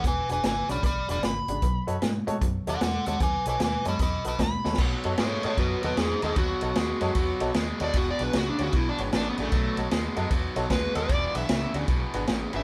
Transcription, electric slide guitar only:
0.07 B4 G#5
0.32 B4 G#5
0.46 B4 G#5
0.71 D5 B5
0.86 D5 B5
1.11 D5 B5
1.25 B5
2.69 A4 F#5
2.83 A4 F#5
3.08 A4 F#5
3.22 B4 G#5
3.49 B4 G#5
3.63 B4 G#5
3.88 D#5 B5
4.03 D#5 B5
4.28 D#5 B5
4.43 B5
5.20 A4 C#5
5.45 A4 C#5
5.59 F#4 B4
5.84 F#4 B4
6.00 D#4 G#4
6.24 D#4 G#4
6.39 F#4
7.84 D5
7.97 F#4
8.11 D5
8.23 B4
8.37 F#4
8.50 D4
8.63 F#4
8.77 E4
8.89 D4
9.16 D4
9.29 B3
9.42 A3
10.72 B4
10.97 B4
11.12 D5
11.38 E5
12.56 E5

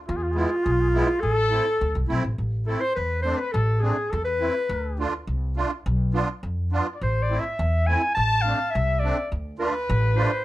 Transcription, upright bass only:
0.09 E2
0.66 B1
1.23 A1
1.81 D2
1.95 C2
2.10 B1
2.24 A1
2.38 A1
2.97 E2
3.54 A1
4.13 E2
4.69 D2
5.27 C2
5.86 B1
6.43 F2
7.01 A1
7.59 E2
8.17 A1
8.75 C2
9.32 D2
9.89 A1

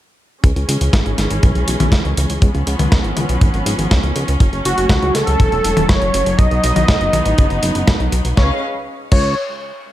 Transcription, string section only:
0.43 E3 G#3 C#4
2.42 F3 B3 C#4
4.40 F#3 A3
6.39 B3 D#4
8.37 C#4 G#4 B4 D#5 F5

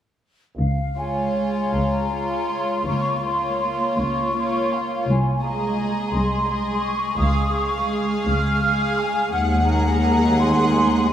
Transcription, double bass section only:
0.58 C#2
1.74 C#2
2.86 C#2
3.99 C#2
5.08 C2
6.12 C2
7.19 C#2
8.27 C#2
9.33 D#2

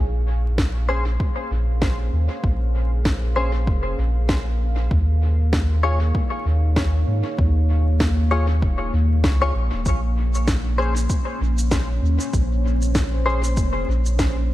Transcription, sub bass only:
Already playing: A#1
1.51 A#1
2.13 D#2
2.44 A#1
3.67 F1
3.98 A#1
4.91 D#2
6.45 D#2
7.07 G#2
7.38 D#2
8.62 D#1
8.93 D#2
9.24 C#2
9.54 A#1
9.72 D#1
9.86 A#1
11.41 A#1
12.02 D#2
12.33 A#1
13.57 F1
13.88 A#1

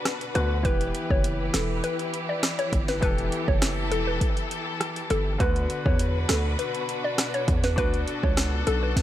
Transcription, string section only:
Already playing: B2 D4 F#4 B4
0.65 E3 E4 G4
3.02 A4
5.40 B2 D4 F#4 B4
7.78 A4

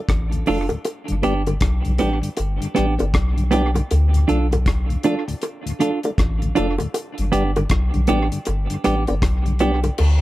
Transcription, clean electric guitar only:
0.47 D4 F4 A4
1.23 B3 D4 G4
1.99 B3 D4 G4
2.75 B3 D4 G4
3.51 B3 D4 G4
3.75 muted clean electric guitar stroke
4.28 D4 F4 A4
5.04 D4 F4 A4
5.80 D4 F4 A4
6.55 D4 F4 A4
7.32 B3 D4 G4
8.08 B3 D4 G4
8.84 B3 D4 G4
9.60 B3 D4 G4
9.85 muted clean electric guitar stroke

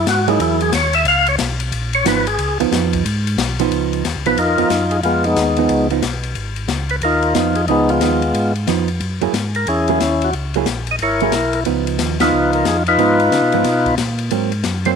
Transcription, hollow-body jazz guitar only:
0.28 F#3 A#3 E4 G#4
2.06 F3 B3 D#4
2.60 F3 B3 D#4
3.60 F3 B3 D#4
4.26 F3 B3 D#4
4.58 F3 B3 D#4
5.58 F3 B3 D#4
5.91 F3 B3 D#4
7.35 F3 B3 D#4
7.69 F3 B3 D#4
8.02 F3 B3 D#4
8.68 F3 B3 D#4
9.21 F#3 A#3 E4 G#4
9.89 F#3 A#3 E4 G#4
10.56 F#3 A#3 E4 G#4
11.22 F#3 A#3 E4 G#4
11.66 F3 B3 D#4
12.20 F3 B3 D#4
12.99 F3 B3 D#4
13.54 F3 B3 D#4
14.31 F#3 A#3 C4
14.86 F#3 A#3 C4

